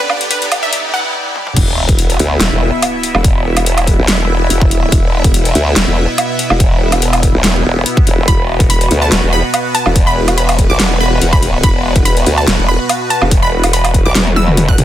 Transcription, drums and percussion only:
0.10 low woodblock
0.21 closed hi-hat
0.31 closed hi-hat
0.42 closed hi-hat
0.52 closed hi-hat, low woodblock
0.73 closed hi-hat
1.36 high tom
1.47 mid tom
1.57 kick, closed hi-hat, crash
1.89 kick, closed hi-hat
1.99 closed hi-hat
2.10 closed hi-hat
2.19 closed hi-hat
2.40 snare, closed hi-hat
2.82 closed hi-hat, low woodblock
3.03 closed hi-hat
3.15 low woodblock
3.24 kick, closed hi-hat
3.57 closed hi-hat, low woodblock
3.66 closed hi-hat
3.78 closed hi-hat, low woodblock
3.87 kick, closed hi-hat
4.08 snare, closed hi-hat
4.50 closed hi-hat
4.61 kick
4.71 closed hi-hat
4.92 kick, closed hi-hat
5.24 kick, closed hi-hat
5.34 closed hi-hat
5.45 closed hi-hat
5.55 closed hi-hat
5.76 snare, closed hi-hat
6.18 closed hi-hat, low woodblock
6.39 closed hi-hat
6.50 low woodblock
6.60 kick, closed hi-hat
6.92 closed hi-hat, low woodblock
7.02 closed hi-hat
7.13 closed hi-hat, low woodblock
7.23 kick, closed hi-hat
7.44 snare, closed hi-hat
7.86 closed hi-hat
7.97 kick
8.07 closed hi-hat
8.28 kick, closed hi-hat
8.60 kick, closed hi-hat
8.70 closed hi-hat
8.81 closed hi-hat
8.91 closed hi-hat
9.12 snare, closed hi-hat
9.54 closed hi-hat, low woodblock
9.75 closed hi-hat
9.86 low woodblock
9.96 kick, closed hi-hat
10.28 closed hi-hat, low woodblock
10.38 closed hi-hat
10.49 closed hi-hat, low woodblock
10.59 kick, closed hi-hat
10.80 snare, closed hi-hat
11.22 closed hi-hat
11.33 kick
11.43 closed hi-hat
11.63 kick, closed hi-hat
11.96 kick, closed hi-hat
12.05 closed hi-hat
12.17 closed hi-hat
12.26 closed hi-hat
12.47 snare, closed hi-hat
12.89 closed hi-hat, low woodblock
13.10 closed hi-hat
13.22 low woodblock
13.31 kick, closed hi-hat
13.64 closed hi-hat, low woodblock
13.73 closed hi-hat
13.85 closed hi-hat, low woodblock
13.94 kick, closed hi-hat
14.15 snare, closed hi-hat, high tom
14.27 high tom
14.36 high tom
14.48 mid tom
14.57 closed hi-hat, mid tom
14.68 kick
14.78 closed hi-hat, mid tom

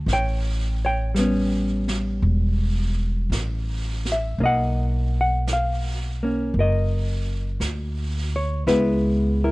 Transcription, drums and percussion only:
0.08 brush sweep, snare
1.16 brush sweep, snare, hi-hat pedal
1.88 snare
2.24 brush sweep
3.32 brush sweep, snare, hi-hat pedal
4.05 snare
4.41 brush sweep
5.48 brush sweep, snare, hi-hat pedal
6.54 brush sweep
7.61 brush sweep, snare, hi-hat pedal
8.67 brush sweep, snare

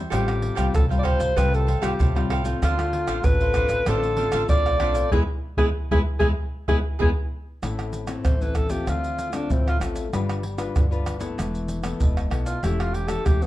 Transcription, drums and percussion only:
0.12 pandeiro, tamborim, maracas, surdo
0.28 pandeiro, tamborim, maracas
0.42 pandeiro
0.57 pandeiro, tamborim, maracas
0.75 pandeiro, tamborim, maracas, surdo
0.91 pandeiro, maracas
1.05 pandeiro, tamborim, surdo
1.20 pandeiro, maracas
1.38 pandeiro, tamborim, maracas, surdo
1.54 pandeiro, maracas
1.68 pandeiro
1.83 pandeiro, tamborim, maracas
2.00 pandeiro, maracas, surdo
2.16 pandeiro, tamborim, maracas
2.30 pandeiro, tamborim
2.45 pandeiro, maracas
2.63 pandeiro, tamborim, maracas, surdo
2.79 pandeiro, tamborim, maracas
2.93 pandeiro
3.08 pandeiro, tamborim, maracas
3.24 pandeiro, tamborim, maracas, surdo
3.40 pandeiro, maracas
3.54 pandeiro, tamborim, maracas, surdo
3.69 pandeiro, maracas
3.86 pandeiro, tamborim, maracas, surdo
4.03 pandeiro, maracas
4.17 pandeiro
4.32 pandeiro, tamborim, maracas
4.49 pandeiro, maracas, surdo
4.66 pandeiro, tamborim, maracas
4.80 pandeiro, tamborim
4.95 pandeiro, maracas
5.12 surdo
5.57 surdo
5.91 surdo
6.20 surdo
6.68 surdo
7.00 surdo
7.63 pandeiro, tamborim, maracas, surdo
7.79 pandeiro, tamborim, maracas
7.93 pandeiro, maracas
8.07 pandeiro, tamborim, maracas
8.25 pandeiro, tamborim, maracas, surdo
8.41 pandeiro, maracas
8.55 pandeiro, tamborim, maracas, surdo
8.70 pandeiro, maracas
8.87 pandeiro, tamborim, maracas, surdo
9.04 pandeiro, maracas
9.19 pandeiro, maracas
9.33 pandeiro, tamborim, maracas
9.50 pandeiro, maracas, surdo
9.68 pandeiro, tamborim, maracas
9.81 pandeiro, tamborim, maracas
9.96 pandeiro, maracas
10.13 pandeiro, tamborim, maracas, surdo
10.29 pandeiro, tamborim, maracas
10.43 pandeiro
10.58 pandeiro, tamborim, maracas
10.76 pandeiro, tamborim, maracas, surdo
10.92 pandeiro, maracas
11.06 pandeiro, tamborim, maracas
11.21 pandeiro, maracas
11.39 pandeiro, tamborim, maracas, surdo
11.55 pandeiro, maracas
11.68 pandeiro, maracas
11.83 pandeiro, tamborim, maracas
12.00 pandeiro, maracas, surdo
12.17 pandeiro, tamborim, maracas
12.31 pandeiro, tamborim
12.46 pandeiro, maracas
12.64 pandeiro, tamborim, maracas, surdo
12.80 pandeiro, tamborim, maracas
12.94 pandeiro
13.08 pandeiro, tamborim, maracas
13.26 pandeiro, tamborim, maracas, surdo
13.42 pandeiro, maracas

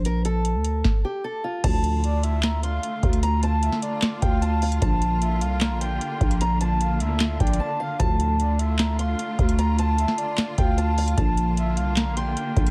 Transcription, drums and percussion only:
0.05 closed hi-hat
0.25 closed hi-hat
0.45 closed hi-hat
0.65 closed hi-hat
0.84 kick, snare
1.64 kick, closed hi-hat, crash
1.84 closed hi-hat
2.04 closed hi-hat
2.23 closed hi-hat
2.43 snare, clap, closed hi-hat
2.63 closed hi-hat
2.83 closed hi-hat
3.03 kick, closed hi-hat
3.13 closed hi-hat
3.23 closed hi-hat
3.43 closed hi-hat
3.63 closed hi-hat
3.73 snare
3.82 closed hi-hat
4.02 snare, clap, closed hi-hat
4.22 kick, closed hi-hat
4.42 closed hi-hat
4.62 closed hi-hat, open hi-hat
4.72 closed hi-hat
4.82 kick, closed hi-hat
5.02 closed hi-hat
5.22 closed hi-hat
5.41 closed hi-hat
5.61 snare, clap, closed hi-hat
5.81 closed hi-hat
6.01 closed hi-hat
6.21 kick, closed hi-hat
6.31 closed hi-hat
6.41 closed hi-hat
6.61 closed hi-hat
6.81 closed hi-hat
7.00 closed hi-hat
7.20 snare, clap, closed hi-hat
7.40 kick, closed hi-hat
7.47 closed hi-hat
7.53 closed hi-hat
8.00 kick, closed hi-hat
8.20 closed hi-hat
8.40 closed hi-hat
8.59 closed hi-hat
8.78 snare, clap, closed hi-hat
8.99 closed hi-hat
9.19 closed hi-hat
9.39 kick, closed hi-hat
9.49 closed hi-hat
9.59 closed hi-hat
9.79 closed hi-hat
9.98 closed hi-hat
10.08 snare
10.18 closed hi-hat
10.37 snare, clap, closed hi-hat
10.58 kick, closed hi-hat
10.78 closed hi-hat
10.98 closed hi-hat, open hi-hat
11.08 closed hi-hat
11.18 kick, closed hi-hat
11.37 closed hi-hat
11.57 closed hi-hat
11.77 closed hi-hat
11.96 snare, clap, closed hi-hat
12.17 closed hi-hat
12.37 closed hi-hat
12.57 kick, closed hi-hat
12.67 closed hi-hat

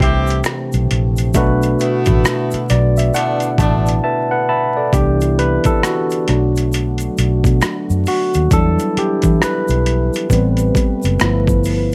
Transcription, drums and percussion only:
0.00 kick, closed hi-hat
0.27 closed hi-hat, shaker
0.44 finger snap, cross-stick, closed hi-hat, shaker
0.73 closed hi-hat, shaker
0.91 closed hi-hat
1.17 closed hi-hat, shaker
1.34 kick, closed hi-hat, shaker
1.62 closed hi-hat, shaker
1.80 closed hi-hat, shaker
2.06 kick, closed hi-hat, shaker
2.25 finger snap, cross-stick, closed hi-hat, shaker
2.51 closed hi-hat, shaker
2.69 cross-stick, closed hi-hat, shaker
2.97 closed hi-hat, shaker
3.14 closed hi-hat, shaker
3.40 closed hi-hat, shaker
3.58 kick, closed hi-hat, shaker
3.87 closed hi-hat, shaker
4.93 kick, closed hi-hat, shaker
5.21 closed hi-hat, shaker
5.39 closed hi-hat
5.64 kick, closed hi-hat, shaker
5.83 finger snap, cross-stick, closed hi-hat, shaker
6.11 closed hi-hat, shaker
6.28 cross-stick, closed hi-hat
6.56 closed hi-hat, shaker
6.72 closed hi-hat, shaker
6.98 closed hi-hat, shaker
7.18 closed hi-hat, shaker
7.44 kick, closed hi-hat, shaker
7.62 finger snap, cross-stick, closed hi-hat, shaker
7.90 shaker
8.06 open hi-hat, shaker
8.34 closed hi-hat, shaker
8.51 kick, closed hi-hat, shaker
8.79 closed hi-hat, shaker
8.97 closed hi-hat
9.22 kick, closed hi-hat, shaker
9.42 finger snap, cross-stick, closed hi-hat, shaker
9.68 closed hi-hat, shaker
9.86 closed hi-hat
10.14 closed hi-hat, shaker
10.30 kick, closed hi-hat, shaker
10.57 closed hi-hat, shaker
10.75 kick, closed hi-hat, shaker
11.03 closed hi-hat, shaker
11.20 finger snap, cross-stick, closed hi-hat, shaker
11.47 kick, shaker
11.64 open hi-hat, shaker

